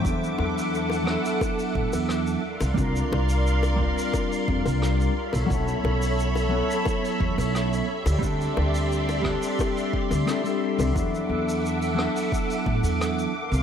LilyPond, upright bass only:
\new Staff \with { instrumentName = "Upright bass" } { \clef bass \time 4/4 \key e \minor \tempo 4 = 88 e,16 r16 e,4 r4 a,16 e,8 r8 c,16 | c,16 r16 c,4 r4 f,16 c,8 r8 b,,16 | b,,16 r16 b,,4 r4 e,16 b,,8 r8 d,16 | d,16 r16 d,4 r4 r16 d,16 r8. c,16 |
e,16 r16 e,4 r4 a,16 e,8 r8 c,16 | }